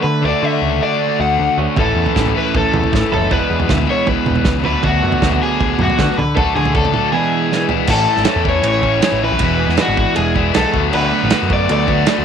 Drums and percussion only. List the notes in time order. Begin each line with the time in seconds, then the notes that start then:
1.76 kick, floor tom
2.06 floor tom
2.16 kick, snare
2.26 floor tom
2.55 kick, floor tom
2.73 floor tom, mid tom
2.84 floor tom
2.93 kick, snare
3.14 floor tom
3.31 kick, floor tom
3.60 floor tom
3.69 kick, snare
3.78 floor tom
4.07 kick, floor tom
4.26 floor tom, mid tom
4.35 floor tom
4.45 kick, snare
4.64 floor tom
4.83 kick, floor tom
5.12 floor tom
5.22 kick, snare
5.32 floor tom
5.60 kick, floor tom
5.79 floor tom, mid tom
5.90 floor tom
5.99 kick, snare
6.19 floor tom
6.37 kick, floor tom
6.57 floor tom
6.65 floor tom
6.75 kick
6.85 floor tom
6.94 mid tom
7.52 snare
7.69 floor tom
7.87 kick, crash
8.17 snare
8.25 snare, ride bell
8.45 kick
8.63 ride bell
8.83 kick
9.02 snare, ride bell
9.39 kick, ride bell
9.69 snare
9.77 snare, ride bell
9.97 kick
10.16 ride bell
10.36 kick
10.54 snare, ride bell
10.74 kick
10.93 crash
11.30 snare, ride bell
11.50 kick
11.69 ride bell
11.88 kick
12.07 snare, ride bell